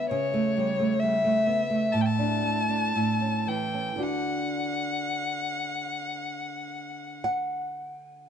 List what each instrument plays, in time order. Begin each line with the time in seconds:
Already playing: nylon-string guitar B3
0.10 nylon-string guitar C#3, violin C#5
0.34 nylon-string guitar A3
0.57 nylon-string guitar G3
0.79 nylon-string guitar A3
1.00 nylon-string guitar G3, violin E5
1.24 nylon-string guitar A3
1.46 nylon-string guitar B3
1.70 nylon-string guitar A3
1.92 nylon-string guitar A2, violin A5
2.01 violin G5
2.06 violin A5
2.19 nylon-string guitar D4
2.43 nylon-string guitar A3
2.69 nylon-string guitar D4
2.96 nylon-string guitar A2
3.21 nylon-string guitar C#4
3.47 nylon-string guitar E3, violin G5
3.74 nylon-string guitar C#4
3.96 nylon-string guitar D3 D4 F#4
4.03 violin F#5
7.24 nylon-string guitar F#5